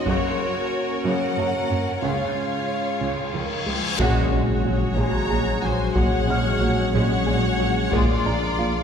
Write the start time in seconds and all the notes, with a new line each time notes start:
Already playing: A#3 F#4 C#5 C6
0.05 F#2 C#3 F#3 C#4 A#4 C#5, taiko
1.04 F#2 C#3 F#3 F#5
1.37 F#2 F#3 A#3 A#5
1.70 F#2 A#3 C#4
2.02 C#2 C#3 G#3 F4 G#4 C#5 F5, reverse cymbal
3.01 C#2 C#3
3.34 C#2 D#3 F3
3.66 C#2 F3 G#3
3.98 A#1 A#2 F#3 G#3 C#4 F#4 G#4 C#5 F#5, taiko, impact
4.32 A#1 A#2 G#3 C#4
4.65 A#1 A#2 F#3 F#4
4.97 A#1 A#2 F#3 G#3 G#4 C#5 G#5 A#5
5.30 A#1 A#2 G#3 G#4
5.62 A#1 A#2 F#3 F#4 C5 G#5
5.95 A#1 A#2 F#3 G#3 C#5 F#5, taiko
6.28 A#1 A#2 G#3 C#4 F6
6.61 A#1 A#2 F#3 F#4
6.94 A#1 A#2 F#3 G#3 C#5 F#5
7.27 A#1 A#2 G#3 G#4
7.59 A#1 A#2 F#3 F#4
7.92 A#1 A#2 F3 G#3 A#3 F4 G#4 A#4 D5, taiko
8.25 A#1 A#2 G#3 D4 A#5
8.58 A#1 A#2 F3 F4